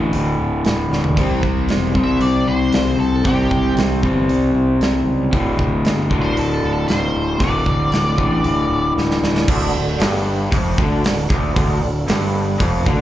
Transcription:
Already playing: fingered electric bass A1, overdriven electric guitar D2 A2 D3
0.13 fingered electric bass D1, open hi-hat
0.40 fingered electric bass D1
0.65 fingered electric bass D1, snare, open hi-hat
0.90 fingered electric bass D1, snare
1.04 floor tom
1.16 fingered electric bass C2, overdriven electric guitar C3 G3 C4, kick, open hi-hat, crash
1.43 fingered electric bass C2, kick
1.69 fingered electric bass E1, snare, open hi-hat
1.94 fingered electric bass C2, overdriven electric guitar C3 G3 C4, kick
2.04 lead electric guitar E5
2.21 fingered electric bass C2, lead electric guitar D5, open hi-hat
2.47 fingered electric bass C2, lead electric guitar C5
2.72 fingered electric bass C2, snare, open hi-hat
2.99 fingered electric bass C2, lead electric guitar A4
3.24 fingered electric bass C2, overdriven electric guitar C3 G3 C4, lead electric guitar G4, kick, open hi-hat
3.51 fingered electric bass C2, kick
3.77 fingered electric bass C2, snare, open hi-hat
4.03 fingered electric bass G1, overdriven electric guitar C3 G3 C4, kick
4.29 fingered electric bass C2, open hi-hat
4.54 fingered electric bass C2
4.81 fingered electric bass C2, snare, open hi-hat
5.06 fingered electric bass C#2
5.31 fingered electric bass D1, overdriven electric guitar D2 A2 D3, kick, open hi-hat
5.59 fingered electric bass D1, kick
5.85 fingered electric bass G1, snare, open hi-hat
6.10 fingered electric bass D1, overdriven electric guitar D2 A2 D3, kick
6.22 lead electric guitar C5
6.37 fingered electric bass D1, lead electric guitar A4, open hi-hat
6.63 fingered electric bass D1
6.73 lead electric guitar A4
6.88 fingered electric bass D1, lead electric guitar C5, snare, open hi-hat
7.14 fingered electric bass D1
7.39 fingered electric bass D1, overdriven electric guitar D2 A2 D3, lead electric guitar D5, kick, open hi-hat
7.66 fingered electric bass D1, kick
7.91 fingered electric bass D1, snare, open hi-hat
8.17 fingered electric bass A1, overdriven electric guitar D2 A2 D3, kick
8.43 fingered electric bass D1, open hi-hat
8.70 fingered electric bass D1
8.96 fingered electric bass D1, snare
9.11 snare
9.23 fingered electric bass D1, snare
9.37 snare
9.48 fingered electric bass D1, overdriven electric guitar D2, tonewheel organ D4 F#4 A4, kick, crash
9.73 fingered electric bass D1, overdriven electric guitar D2
9.99 fingered electric bass G1, overdriven electric guitar G2, snare, open hi-hat
10.51 fingered electric bass F1, overdriven electric guitar F2, kick, open hi-hat
10.78 fingered electric bass D2, overdriven electric guitar D3, tonewheel organ D4 F#4 A4, kick
11.04 fingered electric bass D1, overdriven electric guitar D2, snare, open hi-hat
11.30 fingered electric bass D1, overdriven electric guitar D2, kick
11.56 fingered electric bass D1, overdriven electric guitar D2, tonewheel organ D4 F#4 A4, kick, open hi-hat
11.82 fingered electric bass D1, overdriven electric guitar D2
12.08 fingered electric bass G1, overdriven electric guitar G2, snare, open hi-hat
12.59 fingered electric bass F1, overdriven electric guitar F2, kick, open hi-hat
12.86 fingered electric bass D2, overdriven electric guitar D3, tonewheel organ D4 F#4 A4, kick

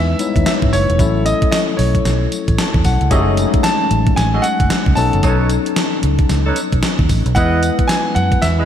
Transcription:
Already playing: fingered electric bass E2, tine electric piano G#3 B3 D#4 E4 B4, grand piano E5
0.19 tine electric piano G3 B3 D#4 E4 C#5, closed hi-hat, tambourine
0.26 tine electric piano G#3
0.36 fingered electric bass D#2, kick, closed hi-hat
0.46 grand piano E5, snare, closed hi-hat, tambourine
0.62 fingered electric bass G#2, kick
0.73 fingered electric bass F#1, grand piano C#5, open hi-hat, tambourine
0.90 fingered electric bass E1, closed hi-hat
0.98 fingered electric bass A1, tine electric piano F#3 A3 C#4 E4 A4, kick, closed hi-hat, tambourine
1.26 grand piano D#5, closed hi-hat, tambourine
1.42 kick, closed hi-hat
1.51 grand piano D#5, snare, closed hi-hat, tambourine
1.77 fingered electric bass B1, grand piano C#5, open hi-hat
1.95 kick, closed hi-hat
2.05 fingered electric bass B1, snare, closed hi-hat, tambourine
2.32 closed hi-hat, tambourine
2.48 fingered electric bass A1, kick, closed hi-hat
2.59 tine electric piano A5, snare, closed hi-hat, tambourine
2.74 fingered electric bass E2, kick
2.84 fingered electric bass B1, tine electric piano F#5, kick, open hi-hat, tambourine
3.01 fingered electric bass C#2, closed hi-hat
3.11 fingered electric bass F#1, tine electric piano F#3 A3 C#4 D#4 G4, horn section F#4 G#4 A4 D#5, kick, closed hi-hat, tambourine
3.20 tine electric piano G#3
3.37 closed hi-hat, tambourine
3.54 kick, closed hi-hat
3.63 grand piano A5, snare, closed hi-hat, tambourine
3.91 fingered electric bass A1, closed hi-hat
4.07 kick, closed hi-hat
4.16 fingered electric bass A1, grand piano G#5, snare, closed hi-hat, tambourine
4.33 horn section F#4 G#4 A4 D#5
4.42 grand piano F#5, closed hi-hat, tambourine
4.60 fingered electric bass F#1, kick, closed hi-hat
4.70 snare, closed hi-hat, tambourine
4.86 fingered electric bass C#2, kick
4.95 fingered electric bass B1, tine electric piano F#3 B3 C#4 D#4 A4, grand piano A5, open hi-hat, tambourine
5.13 fingered electric bass F#1, closed hi-hat
5.23 fingered electric bass B1, horn section D#4 A4 B4 C#5, kick, closed hi-hat, tambourine
5.50 closed hi-hat, tambourine
5.66 closed hi-hat
5.76 snare, closed hi-hat, tambourine
6.03 fingered electric bass C#2, closed hi-hat
6.19 kick, closed hi-hat
6.29 fingered electric bass C#2, snare, closed hi-hat, tambourine
6.45 horn section D#4 A4 B4 C#5
6.56 closed hi-hat, tambourine
6.73 fingered electric bass B1, kick, closed hi-hat
6.83 snare, closed hi-hat, tambourine
6.99 fingered electric bass D#2, kick
7.09 fingered electric bass A1, kick, open hi-hat, tambourine
7.26 fingered electric bass B1, closed hi-hat
7.35 fingered electric bass E2, tine electric piano G#3 B3 E4 B4, horn section E4 G#4 B4 D#5, grand piano F#5, kick, closed hi-hat, tambourine
7.63 closed hi-hat, tambourine
7.79 kick, closed hi-hat
7.88 grand piano G#5, snare, closed hi-hat, tambourine
8.15 fingered electric bass F#2, grand piano F#5, closed hi-hat
8.32 kick, closed hi-hat
8.42 fingered electric bass E2, grand piano E5, snare, closed hi-hat, tambourine
8.58 horn section E4 G#4 B4 D#5

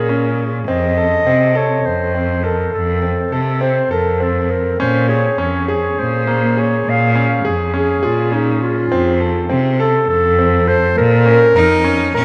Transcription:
Already playing: cello A#2, clarinet A#4
0.09 grand piano C#4
0.68 cello F2, grand piano C4, clarinet D#5
0.97 grand piano A4
1.26 cello C3, grand piano C4
1.55 grand piano A4, clarinet C#5
1.85 cello F2, clarinet C5
2.15 grand piano C4
2.44 grand piano A4, clarinet A#4
2.73 cello F2, clarinet A4
3.03 grand piano C4
3.32 cello C3, grand piano A4
3.61 grand piano C4, clarinet C5
3.91 cello F2, grand piano A4, clarinet A#4
4.20 grand piano C4, clarinet A4
4.50 clarinet A#4
4.80 cello A#2, grand piano C#4, clarinet C5
5.09 grand piano G#4, clarinet C#5
5.38 cello F2, grand piano C#4, clarinet C#5
5.68 grand piano G#4
5.98 cello A#2, clarinet C5
6.27 grand piano A#3
6.57 grand piano G#4, clarinet C#5
6.86 cello A#2, clarinet F5
7.15 grand piano C#4
7.45 cello F2, grand piano G#4
7.74 grand piano C#4, clarinet G#4
8.03 cello A#2, clarinet F4, grand piano G#4
8.32 grand piano C#4, clarinet D#4
8.63 clarinet F4
8.91 cello F2, grand piano C4
9.20 grand piano A4
9.49 cello C3, grand piano C4
9.79 grand piano A4, clarinet A4
10.09 cello F2, clarinet A4
10.39 grand piano C4
10.67 grand piano A4, clarinet C5
10.96 cello A#2, clarinet A#4
11.26 grand piano C#4
11.55 cello F2 D#4, grand piano A#4
11.84 grand piano C#4
12.14 cello A#2 C#4, grand piano A#4

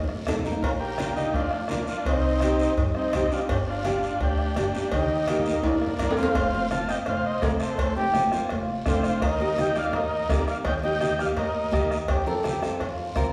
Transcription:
Already playing: upright bass A#1
0.04 low conga
0.09 bombo rim
0.16 low conga
0.27 upright bass C2, nylon-string guitar A#3 D#4 A4, bombo rim, cowbell, low conga, low timbale, short guiro
0.39 low conga
0.45 nylon-string guitar A#3 D#4 A#4, short guiro
0.51 low conga
0.62 upright bass A#1, transistor combo organ F4 A#4, bombo low, cowbell, long guiro
0.80 transistor combo organ G4 A#4
0.98 nylon-string guitar A#3 D4 F4, bombo rim, cowbell, high conga, short guiro
1.16 transistor combo organ D#4 G4, high conga, short guiro
1.33 upright bass F2, transistor combo organ D4 F4, bombo low, cowbell, low conga, long guiro
1.51 transistor combo organ D4 F4, bombo rim
1.68 upright bass A#1, transistor combo organ A#3 D4, nylon-string guitar A#3 D4 F4, bombo rim, cowbell, high conga, short guiro
1.87 nylon-string guitar A#3 D4 F4, transistor combo organ D4 F4, short guiro
2.05 upright bass C2, transistor combo organ C4 D#4, bombo low, cowbell, long guiro
2.40 nylon-string guitar C4 D#4 G4, bombo rim, cowbell, high conga, short guiro
2.59 short guiro
2.77 upright bass G2, bombo low, cowbell, low conga, long guiro
2.95 transistor combo organ C4 D#4, bombo rim
3.13 upright bass C2, nylon-string guitar C4 D#4 G4, bombo rim, cowbell, high conga, low conga, short guiro
3.32 nylon-string guitar C4 D#4 G4, transistor combo organ D4 F4, short guiro
3.49 upright bass G1, transistor combo organ D4 G4, bombo low, cowbell, long guiro
3.67 transistor combo organ D4 F4
3.85 nylon-string guitar A#3 D4 G4, transistor combo organ D4 F4, bombo rim, cowbell, high conga, short guiro
4.03 short guiro
4.20 upright bass D2, transistor combo organ D4 G4, bombo low, cowbell, low conga, long guiro
4.38 bombo rim
4.56 upright bass G1, nylon-string guitar A#3 D4 G4, transistor combo organ D4 G4, bombo rim, cowbell, high conga, short guiro
4.75 nylon-string guitar A#3 D4 G4, short guiro
4.91 upright bass D#2, transistor combo organ D#4 G4, bombo low, cowbell, high conga, long guiro
5.03 high conga
5.27 transistor combo organ A#3 D#4, nylon-string guitar A#3 D#4 G4, bombo rim, cowbell, high conga, short guiro
5.39 low conga
5.46 short guiro
5.51 low conga
5.63 upright bass A#1, transistor combo organ A#3 D4, bombo low, cowbell, high timbale, long guiro
5.82 bombo rim
5.87 low conga
5.99 upright bass A#1, nylon-string guitar A#3 D4 F4, transistor combo organ A#4 D5, bombo low, bombo rim, cowbell, low conga, short guiro
6.11 low conga, low timbale
6.17 nylon-string guitar A#3 D4 F4, transistor combo organ C5 F5, short guiro
6.23 low conga, low timbale
6.35 upright bass F1, bombo low, bombo rim, cowbell, high conga, long guiro
6.53 nylon-string guitar A#3 C4 F4
6.71 nylon-string guitar A#3 C4 F4, transistor combo organ F5 A5, bombo rim, high conga, short guiro
6.88 nylon-string guitar A#3 C4 F4, transistor combo organ D#5 G5, bombo rim, short guiro
7.06 upright bass F1, transistor combo organ C5 F5, bombo rim, cowbell, high conga, low conga, long guiro
7.26 transistor combo organ C5 D#5
7.42 upright bass F1, nylon-string guitar A#3 C4 F4, transistor combo organ A#4 D5, bombo low, bombo rim, high conga, low timbale, short guiro
7.60 transistor combo organ A4 C5, bombo rim, short guiro
7.78 upright bass F1, bombo low, bombo rim, cowbell, high conga, long guiro
7.96 nylon-string guitar A#3 C4 D#4, trombone G4
8.14 nylon-string guitar A#3 C4 F4, bombo rim, high conga, short guiro
8.32 nylon-string guitar A#3 C4 F4, trombone F4, bombo rim, short guiro
8.49 upright bass F1, trombone F4, bombo rim, cowbell, high conga, low conga, long guiro
8.86 upright bass F1, nylon-string guitar A#3 C4 D4, transistor combo organ F4 C5, bombo low, bombo rim, high conga, low conga, low timbale, short guiro
9.03 bombo rim, short guiro
9.22 upright bass D#2, transistor combo organ A#4 D#5, bombo low, bombo rim, cowbell, long guiro
9.40 nylon-string guitar A#3 D#4 G4
9.57 nylon-string guitar A#3 D#4 G4, transistor combo organ D#5 G5, bombo rim, high conga, short guiro
9.76 nylon-string guitar A#3 D#4 F4, transistor combo organ D5 F5, bombo rim, short guiro
9.93 upright bass D#2, transistor combo organ A#4 D#5, bombo rim, cowbell, high conga, low conga, long guiro
10.29 upright bass D#2, nylon-string guitar A#3 D#4 G4, transistor combo organ A#4 D5, bombo low, bombo rim, high conga, low timbale, short guiro
10.47 transistor combo organ D5 F5, bombo rim, short guiro
10.65 upright bass D#2, transistor combo organ D#5 G5, bombo low, bombo rim, cowbell, high conga, low conga, long guiro
10.83 nylon-string guitar A#3 D#4 G4, transistor combo organ D#5 G5
11.01 nylon-string guitar A#3 D#4 G4, bombo rim, high conga, short guiro
11.19 nylon-string guitar A#3 D#4 G4, transistor combo organ D5 F5, bombo rim, short guiro
11.37 upright bass D#2, transistor combo organ A#4 D#5, bombo rim, cowbell, high conga, low conga, long guiro
11.71 upright bass D#2, nylon-string guitar A#3 D#4 G4, transistor combo organ A#4 D#5, bombo low, bombo rim, high conga, short guiro
11.91 bombo rim, short guiro
12.08 upright bass F2, trombone G4, bombo low, bombo rim, cowbell, high conga, long guiro
12.26 nylon-string guitar C4 F4 A#4, trombone A4
12.44 nylon-string guitar C4 F4 A#4, trombone G4, bombo rim, high conga, short guiro
12.62 nylon-string guitar C4 F4 A4, trombone F4, bombo rim, short guiro
12.80 upright bass F2, trombone F4, bombo rim, cowbell, high conga, low conga, long guiro
12.99 trombone F4
13.16 upright bass F2, nylon-string guitar C4 F4 A#4, bombo low, bombo rim, high conga, short guiro

